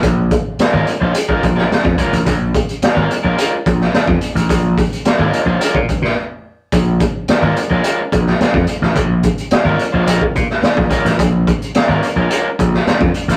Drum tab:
HH |x-x-x-x-x-x-x-xx|x-xxx-x-x-x-x-xx|x-xxx-x-x-x-----|x-x-x-x-x-x-x-x-|
SD |----o------oo---|----o------oo---|----o------o----|----o------oo--o|
BD |o-o------oo--oo-|o-o-------o--o--|o-o------oo-----|o-o-------o--o--|

HH |x-xxx-x-x-x-x-xx|x-xxx-x-x-x-x-xx|
SD |----o------oo--o|----o------oo--o|
BD |o-o------oo--oo-|o-o-------o--o--|